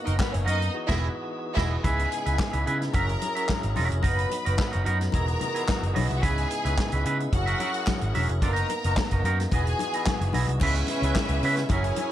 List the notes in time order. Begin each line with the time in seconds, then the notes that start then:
Already playing: A#3 B3 D#4
0.05 F#1 D#4 F#4 A#4 D#5, closed hi-hat
0.18 B3 B4, muted clean electric guitar stroke, kick, snare, clap, high conga
0.33 F#1 C#4 C#5, muted clean electric guitar stroke, closed hi-hat
0.45 F#2 D#4 F#4 A#4 D#5, closed hi-hat
0.61 muted clean electric guitar stroke, closed hi-hat
0.74 E3 F#4 G#4
0.87 E1 B3 E4 G#4 D#5 E5, kick, snare, crash
1.54 E1 B3 E4 G#4 D#5 E5, kick, snare, crash
1.83 C#2 C#3 G#3 B3 D#4 E4 G#4 B4 E5 G#5, kick, closed hi-hat, muted conga
1.99 closed hi-hat
2.11 muted clean electric guitar stroke, closed hi-hat
2.26 C#2 E4 G#4 B4 E5, closed hi-hat
2.39 kick, snare, clap, high conga
2.53 C#2 E4 G#4 B4 E5, closed hi-hat
2.66 C#3 E4 G#4 B4 E5, closed hi-hat
2.80 muted clean electric guitar stroke, snare, closed hi-hat
2.92 F#1 F#3 C#4 F#4 G#4 A#4 E5 A#5, kick, closed hi-hat, muted conga
3.08 muted clean electric guitar stroke, closed hi-hat
3.21 muted clean electric guitar stroke, closed hi-hat, muted conga
3.35 C#4 F#4 A#4 E5, closed hi-hat
3.48 muted clean electric guitar stroke, kick, snare, clap, high conga
3.62 G#1, muted clean electric guitar stroke, closed hi-hat
3.76 E1 C#4 F#4 A#4 E5, open hi-hat, high conga
3.90 F1, muted clean electric guitar stroke, closed hi-hat
4.02 F#1 F#3 B3 D#4 F#4 A#4 B4 D#5 B5, kick, closed hi-hat, muted conga
4.19 closed hi-hat
4.31 muted clean electric guitar stroke, closed hi-hat, muted conga
4.45 F#1 D#4 F#4 A#4 D#5, closed hi-hat
4.58 muted clean electric guitar stroke, kick, snare, clap, high conga
4.71 F#1 D#4 F#4 A#4 D#5, closed hi-hat
4.85 F#2 D#4 F#4 A#4 D#5, closed hi-hat
5.00 muted clean electric guitar stroke, snare, closed hi-hat
5.12 E1 E3 B3 E4 F#4 G#4 A#4 D#5 A#5, kick, closed hi-hat, muted conga
5.28 muted clean electric guitar stroke, closed hi-hat
5.40 muted clean electric guitar stroke, closed hi-hat, muted conga, low conga
5.54 B3 E4 G#4 D#5, closed hi-hat
5.66 muted clean electric guitar stroke, kick, snare, clap, high conga
5.81 F#1, muted clean electric guitar stroke, closed hi-hat
5.94 B1 B3 C#4 E4 G#4 C#5 D#5, open hi-hat, high conga
6.03 D#4 D#5
6.09 C2 E4 E5, muted clean electric guitar stroke, closed hi-hat
6.16 F#4 F#5
6.22 C#2 C#3 G#3 B3 C#4 D#4 E4 G#4 B4 E5 G#5, kick, closed hi-hat, muted conga
6.38 closed hi-hat
6.50 muted clean electric guitar stroke, closed hi-hat
6.65 C#2 C#4 G#4 B4 E5, closed hi-hat
6.78 muted clean electric guitar stroke, kick, snare, clap, high conga
6.92 C#2 C#4 G#4 B4 E5, closed hi-hat
7.05 C#3 C#4 G#4 B4 E5, closed hi-hat
7.20 muted clean electric guitar stroke, closed hi-hat
7.32 F#1 F#3 C#4 F#4 G#4 A#4 F#5, muted clean electric guitar stroke, kick, closed hi-hat, muted conga
7.46 C#4 F#4 A#4 E5, closed hi-hat
7.60 C#4 F#4 A#4 E5, closed hi-hat, muted conga
7.74 muted clean electric guitar stroke, closed hi-hat
7.87 muted clean electric guitar stroke, kick, snare, clap, high conga
8.01 G#1, muted clean electric guitar stroke, closed hi-hat
8.14 E1 C#4 F#4 A#4 E5, open hi-hat, high conga
8.29 F1, muted clean electric guitar stroke, closed hi-hat
8.42 F#1 A#3 B3 D4 D#4 F4 A#4 D#5 A#5, kick, closed hi-hat, muted conga
8.53 D#4 F#4, closed hi-hat
8.70 muted clean electric guitar stroke, closed hi-hat, muted conga
8.84 F#1 D#4 F#4 A#4 D#5, closed hi-hat
8.97 kick, snare, clap, high conga
9.11 F#1 D#4 F#4 A#4 D#5, kick, closed hi-hat
9.24 F#2 D#4 F#4 A#4 D#5, closed hi-hat
9.40 muted clean electric guitar stroke, snare, closed hi-hat
9.52 E1 E3 B3 E4 F#4 G#4 D#5 G#5, kick, closed hi-hat, muted conga
9.66 muted clean electric guitar stroke, closed hi-hat
9.79 muted clean electric guitar stroke, closed hi-hat, muted conga
9.94 B3 E4 G#4 D#5, closed hi-hat
10.06 kick, snare, clap, high conga
10.21 F#1, muted clean electric guitar stroke, closed hi-hat
10.33 B1 B3 E4 G#4 D#5, open hi-hat, high conga
10.48 C2, muted clean electric guitar stroke, closed hi-hat
10.60 C#2 C#3 G#3 B3 C#4 E4 G#4 B4 E5, kick, crash, muted conga
10.75 muted clean electric guitar stroke, closed hi-hat
10.87 muted clean electric guitar stroke, closed hi-hat, muted conga
11.02 C#2 C#4 G#4 B4 E5, closed hi-hat
11.15 kick, snare, clap, high conga
11.29 C#2, muted clean electric guitar stroke, closed hi-hat
11.43 C#3 C#4 G#4 B4 E5, open hi-hat
11.57 muted clean electric guitar stroke, snare, closed hi-hat
11.69 F#1 F#3 C#4 E4 F#4 G#4 A#4 C#5 E5 G#5, kick, closed hi-hat, muted conga
11.84 muted clean electric guitar stroke, closed hi-hat
11.96 muted clean electric guitar stroke, closed hi-hat, muted conga